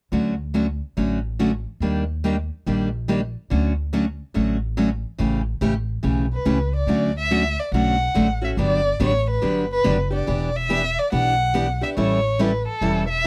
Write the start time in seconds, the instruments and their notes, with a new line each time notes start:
0.12 upright bass D2, steel-string acoustic guitar D3 F#3 A3 C#4 F#4
0.54 steel-string acoustic guitar D3 F#3 A3 C#4 F#4
0.97 upright bass A1, steel-string acoustic guitar D3 F#3 A3 C#4 F#4
1.39 steel-string acoustic guitar D3 F#3 A3 C#4 F#4
1.80 upright bass D#2, steel-string acoustic guitar D#3 G3 A#3 D4 G4
2.24 steel-string acoustic guitar D#3 G3 A#3 D4 G4
2.66 upright bass A#1, steel-string acoustic guitar D#3 G3 A#3 D4 G4
3.08 steel-string acoustic guitar D#3 G3 A#3 D4 G4
3.50 upright bass D2, steel-string acoustic guitar D3 F#3 A3 C#4 F#4
3.93 steel-string acoustic guitar D3 F#3 A3 C#4 F#4
4.34 upright bass A1, steel-string acoustic guitar D3 F#3 A3 C#4 F#4
4.77 steel-string acoustic guitar D3 F#3 A3 C#4 F#4
5.18 upright bass A1, steel-string acoustic guitar C#3 E3 A3 C#4 G4
5.61 upright bass A1, steel-string acoustic guitar C#3 E3 A3 C#4 G4
6.03 upright bass B1, steel-string acoustic guitar C#3 E3 A3 C#4 G4
6.34 violin B4
6.45 upright bass C#2, steel-string acoustic guitar C#3 E3 A3 C#4 G4
6.76 violin D5
6.87 upright bass D2, steel-string acoustic guitar D3 F#3 A3 C#4 F#4
7.18 violin E5
7.31 steel-string acoustic guitar D3 F#3 A3 C#4 F#4
7.60 violin D5
7.72 upright bass B1, steel-string acoustic guitar D3 F#3 A3 C#4 F#4, violin F#5
8.15 upright bass A1, steel-string acoustic guitar D3 F#3 A3 C#4 F#4
8.42 steel-string acoustic guitar A3 C#4 F#4, violin E5
8.57 upright bass G1, steel-string acoustic guitar D3 F#3 B3 D4 G4, violin D5
9.00 upright bass A1, steel-string acoustic guitar D3 F#3 B3 D4 G4
9.04 violin C#5
9.30 violin B4
9.42 upright bass G1, steel-string acoustic guitar D3 F#3 B3 D4 G4
9.72 violin B4
9.84 upright bass F#1, steel-string acoustic guitar D3 F#3 B3 D4 G4
10.11 steel-string acoustic guitar B3 D4 G4
10.15 violin D5
10.27 upright bass E1, steel-string acoustic guitar E3 B3 D4 G4
10.56 violin E5
10.69 steel-string acoustic guitar E3 B3 D4 G4
10.99 violin D5
11.12 upright bass B1, steel-string acoustic guitar E3 B3 D4 G4, violin F#5
11.54 steel-string acoustic guitar E3 B3 D4 G4
11.81 steel-string acoustic guitar B3 D4 G4, violin E5
11.97 upright bass A1, steel-string acoustic guitar E3 G3 C#4 E4 A4, violin C#5
12.39 steel-string acoustic guitar E3 G3 C#4 E4 A4, violin B4
12.68 violin A4
12.81 upright bass E1, steel-string acoustic guitar E3 G3 C#4 E4 A4
13.09 violin E5